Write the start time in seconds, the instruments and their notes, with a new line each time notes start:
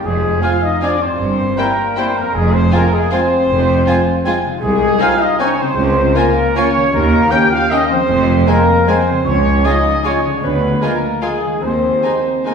Already playing: harp F2 G#3 C4
0.00 double bass section F1, cello section F2, trumpet section G#4, harp C5
0.04 french horn section G#3, flute G#5
0.42 bassoon F3, viola section C4, french horn section F4, violin section F4 G#5, clarinet F4, trumpet section F5, oboe G#5, flute F6
0.62 french horn section D#4, trumpet section D#5, flute D#6
0.82 bassoon F3, viola section C4, french horn section D4, violin section F4 G#5, clarinet F4, trumpet section D5, oboe G#5, flute D6
1.02 harp G2, french horn section C4, trumpet section C5, flute C6
1.07 harp G3
1.11 harp E4
1.16 cello section G2, harp A#4
1.20 double bass section G1
1.57 bassoon G3, french horn section A#3, viola section A#3, clarinet E4, violin section E4 G5, trumpet section A#4, oboe G5, flute A#5
1.96 bassoon G3, viola section A#3, french horn section C4, violin section E4 G5, clarinet E4, trumpet section C5, oboe G5, flute C6
2.16 harp F2, french horn section A#3, trumpet section A#4, flute A#5
2.22 harp C4
2.26 harp F4
2.30 harp G#4, flute G#5
2.35 double bass section F1, cello section F2, french horn section G#3, trumpet section G#4
2.53 french horn section C4, trumpet section C5, flute C6
2.72 viola section G#3, french horn section A#3, bassoon C4, violin section F4 G#5, clarinet F4, trumpet section A#4, oboe G#5, flute A#5
2.92 french horn section G#3, trumpet section G#4, flute G#5
3.12 viola section G#3, bassoon C4, french horn section C4, violin section F4 G#5, clarinet F4, trumpet section C5, oboe G#5, flute C6
3.49 double bass section F1, cello section F2
3.86 viola section G#3, bassoon C4, clarinet F4, violin section F4 G#5, oboe G#5
4.24 viola section G#3, bassoon C4, clarinet F4, violin section F4 G#5, oboe G#5
4.44 harp C3
4.49 harp C4
4.53 harp D#4
4.58 double bass section C2, harp G#4, trumpet section G#4, flute G#5
4.63 cello section C2, french horn section G#3
4.99 bassoon C4, viola section C4, violin section D#4 G#5, clarinet D#4, french horn section F4, trumpet section F5, oboe G#5, flute F6
5.19 french horn section D#4, trumpet section D#5, flute D#6
5.39 bassoon C4, viola section C4, french horn section C#4, clarinet D#4, violin section D#4 G#5, trumpet section C#5, oboe G#5, flute C#6
5.58 harp C#3, french horn section C4, trumpet section C5, flute C6
5.64 harp A#3
5.69 harp F4
5.74 double bass section C#2, harp G#4
5.78 cello section C#2
6.14 bassoon A#3, viola section A#3, french horn section A#3, violin section F4 G#5, clarinet F4, trumpet section A#4, oboe G#5, flute A#5
6.55 bassoon A#3, viola section A#3, french horn section C#4, clarinet F4, violin section F4 G#5, trumpet section C#5, oboe G#5, flute C#6
6.76 harp D#3
6.80 harp A#3
6.85 harp C#4
6.90 double bass section D#2, harp G4, trumpet section A#4, flute A#5
6.94 cello section D#2, french horn section A#3
7.30 bassoon A#3, viola section A#3, violin section C#4 G5, clarinet C#4, french horn section G4, trumpet section G5, oboe G5, flute G6
7.51 french horn section F4, trumpet section F5, flute F6
7.70 bassoon A#3, viola section A#3, violin section C#4 G5, clarinet C#4, french horn section D#4, trumpet section D#5, oboe G5, flute D#6
7.90 harp F3, french horn section C4, trumpet section C5, flute C6
7.96 harp G#3
8.00 harp C4
8.05 double bass section F1, harp G#4
8.09 cello section F2
8.46 bassoon G#3, viola section G#3, french horn section A#3, violin section C4 G#5, clarinet C4, trumpet section A#4, oboe G#5, flute A#5
8.87 bassoon G#3, viola section G#3, french horn section C4, violin section C4 G#5, clarinet C4, trumpet section C5, oboe G#5, flute C6
9.09 harp C#3
9.13 harp G#3
9.18 harp F4
9.22 double bass section C#2, cello section C#2, french horn section C#4, harp G#4, trumpet section C#5, flute C#6
9.65 bassoon G#3, viola section G#3, french horn section D#4, clarinet F4, violin section F4 G#5, trumpet section D#5, oboe G#5, flute D#6
10.05 bassoon G#3, viola section G#3, french horn section C#4, violin section F4 G#5, clarinet F4, trumpet section C#5, oboe G#5, flute C#6
10.25 harp D3
10.30 harp G#3
10.34 harp F4
10.39 cello section D2, harp G#4
10.43 double bass section D2, french horn section B3, trumpet section B4, flute B5
10.81 bassoon G#3, viola section G#3, french horn section A#3, violin section F4 G#5, clarinet F4, trumpet section A#4, oboe G#5, flute A#5
11.23 bassoon G#3, french horn section G#3, viola section G#3, violin section F4 G#5, clarinet F4, trumpet section G#4, flute G#5, oboe G#5
11.45 harp D#3
11.50 harp A#3
11.55 harp D#4
11.59 cello section D#2, double bass section D#2, french horn section C4, harp G#4, trumpet section C5
11.64 flute C6
12.04 bassoon G#3, viola section A#3, violin section D#4 G#5, clarinet D#4, oboe A#5
12.46 bassoon G#3, viola section A#3, french horn section A#3, violin section D#4 G#5, clarinet D#4, trumpet section A#4, oboe A#5